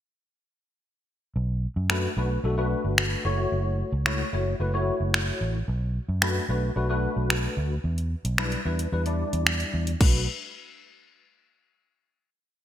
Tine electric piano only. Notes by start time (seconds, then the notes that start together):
1.90 A3 D4 F#4 B4
2.17 A3 D4 F#4 B4
2.44 A3 D4 F#4 A4
2.57 A3 D4 F#4 B4
3.25 A3 E4 F#4 C#5
4.06 A3 E4 F#4 C#5
4.33 A3 E4 F#4 C#5
4.60 A3 E4 F#4 B4
4.73 A3 E4 F#4 C#5
6.22 A3 D4 F#4 B4
6.49 A3 D4 F#4 B4
6.76 A3 D4 F#4 B4
6.89 A3 D4 F#4 B4
8.38 G3 D4 E4 B4
8.65 G3 D4 E4 B4
8.92 G3 D4 E4 B4
9.06 G3 D4 E4 D5
10.01 A3 D4 F#4 B4